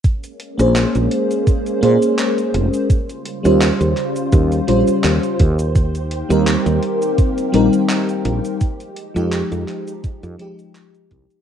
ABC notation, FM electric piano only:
X:1
M:4/4
L:1/16
Q:"Swing 16ths" 1/4=84
K:Bbdor
V:1 name="FM electric piano"
z3 [B,DAc]6- [B,DAc] [B,DAc]6 | z3 [G,DFc]6- [G,DFc] [G,DFc]4 z2 | z3 [G,CEB]6- [G,CEB] [G,CEB]6 | z3 [F,A,EG]6- [F,A,EG] [F,A,EG]6 |]